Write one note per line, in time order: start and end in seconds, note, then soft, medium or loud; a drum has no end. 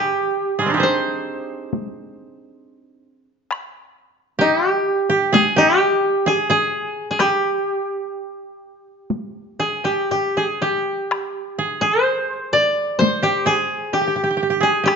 0.00 0.65 G4 medium
0.00 1.94 G4 medium
0.59 0.83 G3 soft
0.59 0.80 G#3 soft
0.59 0.77 G#4 medium
0.66 3.26 C4 soft
0.66 3.10 D4 soft
0.70 3.04 D#4 soft
0.70 2.78 G4 soft
0.77 2.74 G#4 soft
0.77 3.00 C5 medium
0.83 3.01 C5 medium
1.73 taiko high soft
3.51 taiko rim soft
4.39 4.70 D#4 medium
4.39 5.09 G4 medium
4.70 5.40 G4 medium
5.10 5.39 G4 medium
5.33 5.62 G#4 medium
5.33 5.64 G#4 medium
5.33 taiko high medium
5.56 6.32 G4 medium
5.56 6.33 G4 loud
6.26 6.49 G#4 medium
6.26 6.50 G#4 medium
6.50 7.25 G#4 medium
6.50 7.10 G#4 medium
7.11 7.26 G#4 medium
7.19 9.83 G4 medium
7.19 9.84 G4 medium
7.19 taiko rim soft
9.10 taiko high soft
9.59 9.90 G#4 soft
9.59 9.91 G#4 medium
9.84 10.11 G4 soft
9.84 10.11 G4 medium
10.11 10.43 G4 medium
10.11 10.43 G4 soft
10.37 10.68 G#4 soft
10.37 10.68 G#4 medium
10.62 12.66 G4 medium
10.62 11.65 G4 medium
11.11 taiko rim soft
11.59 11.82 G#4 medium
11.81 12.03 G#4 medium
11.81 12.04 G#4 medium
12.03 12.98 C5 medium
12.03 13.00 C5 medium
12.53 14.13 D5 medium
12.99 14.70 C5 medium
12.99 14.72 C5 medium
12.99 taiko high medium
13.23 13.52 G4 medium
13.23 13.53 G4 medium
13.46 13.99 G#4 medium
13.93 14.01 G4 medium
13.93 14.69 G4 medium
14.01 14.07 G4 soft
14.07 14.16 G4 soft
14.16 14.23 G4 soft
14.24 14.30 G4 soft
14.31 14.36 G4 soft
14.37 14.42 G4 soft
14.43 14.50 G4 soft
14.50 14.67 G4 medium
14.61 14.90 G#4 medium
14.61 14.92 G#4 medium
14.84 14.96 G4 medium
14.88 taiko rim medium